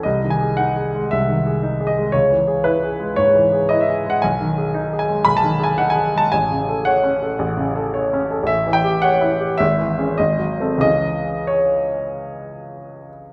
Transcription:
\new Staff \with { instrumentName = "Grand piano" } { \time 4/4 \key cis \minor \tempo 4 = 112 << { dis''8 gis''8 fis''4 e''4. dis''8 | cis''4 b'4 cis''4 dis''16 e''8 fis''16 | gis''4. gis''8 b''16 a''8 gis''16 fis''16 gis''8 a''16 | gis''4 fis''4. r4. |
e''8 g''8 fis''4 e''4 dis''4 | dis''4 cis''2~ cis''8 r8 | } \\ { \tuplet 3/2 { bis,,8 dis8 gis'8 dis'8 gis'8 gis8 bis,,8 dis8 gis'8 dis'8 gis'8 gis8 } | \tuplet 3/2 { cis,8 e8 gis'8 e'8 gis'8 gis8 gis,8 e8 gis'8 e'8 gis'8 gis8 } | \tuplet 3/2 { b,,8 dis8 gis'8 dis'8 gis'8 gis8 b,,8 dis8 gis'8 dis'8 gis'8 gis8 } | \tuplet 3/2 { a,,8 cis8 a'8 cis''8 cis'8 a'8 a,,8 cis8 a'8 cis''8 cis'8 a'8 } |
\tuplet 3/2 { a,,8 e8 g'8 cis''8 e'8 g'8 gis,,8 e8 <cis' gis'>8 gis,,8 fis8 <bis a'>8 } | <cis, e cis' gis'>1 | } >> }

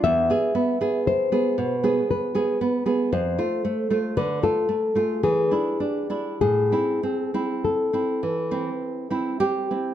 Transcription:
<<
  \new Staff \with { instrumentName = "Nylon-string guitar" } { \time 3/4 \key a \minor \tempo 4 = 57 e''4 c''4 b'4 | c''4 b'16 a'8. gis'4 | gis'4 a'4. r8 | }
  \new Staff \with { instrumentName = "Nylon-string guitar" } { \time 3/4 \key a \minor << { r2. | r2. | r2 r8 g'8 | } \\ { e,16 <b gis'>16 b16 <b gis'>8 <b gis'>16 b,16 <b gis'>8 <b gis'>16 b16 <b gis'>16 | f,16 <a f'>16 a16 <a f'>16 d16 <a f'>16 a16 <a f'>16 e16 <d' e'>16 d'16 <d' e'>16 | a,16 <c' e'>16 c'16 <c' e'>8 <c' e'>16 e16 <c' e'>8 <c' e'>16 c'16 <c' e'>16 | } >> }
>>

